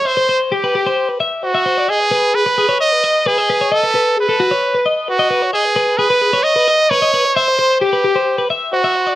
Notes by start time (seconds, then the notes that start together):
0.05 C5 E5
0.17 C5
0.29 C5
0.52 G4
0.64 B4
0.75 G4
0.86 C5
1.09 B4
1.20 E5
1.43 F#4 C5
1.55 E5
1.66 C5
1.78 D5
1.88 G#4 D#5
2.00 B4
2.11 B4
2.34 G#4 B4
2.46 B4
2.58 G#4
2.69 C#5
2.80 D#5
2.92 B4
3.04 D#5
3.26 G#4 B4
3.38 D#5
3.50 B4
3.61 C#5
3.72 A4 D#5
3.83 B4
3.95 B4
4.17 G#4 B4
4.29 A4
4.40 F#4
4.51 C#5
4.75 B4
4.86 D#5
5.08 F#4 B4
5.19 D#5
5.31 B4
5.42 C#5
5.53 G#4 D#5
5.65 B4
5.76 B4
5.98 G#4 B4
6.10 B4
6.22 G#4
6.33 C#5
6.43 D#5
6.56 B4
6.68 D#5
6.90 B4 C#5
7.02 D#5
7.14 B4
7.25 C#5
7.35 C5 E5
7.48 C5
7.59 C5
7.80 G4
7.93 B4
8.04 G4
8.16 C5
8.38 B4
8.50 E5
8.73 F#4 C5
8.84 E5
8.95 C5
9.07 D5